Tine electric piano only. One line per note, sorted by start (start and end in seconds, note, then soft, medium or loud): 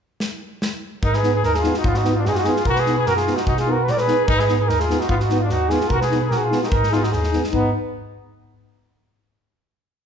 1.03 1.44 G#2 medium
1.44 1.66 D#2 medium
1.84 2.25 G#2 medium
2.26 2.48 F#2 medium
2.66 3.07 B2 medium
3.07 3.29 F#2 medium
3.48 3.88 B2 medium
3.89 4.11 A#2 medium
4.29 4.69 G#2 medium
4.69 4.91 D#2 medium
5.09 5.50 G#2 medium
5.50 5.72 D#2 medium
5.90 6.31 B2 medium
6.30 6.53 A#2 medium
6.72 7.13 G#2 medium
7.13 7.35 D#2 medium
7.53 7.72 G#2 medium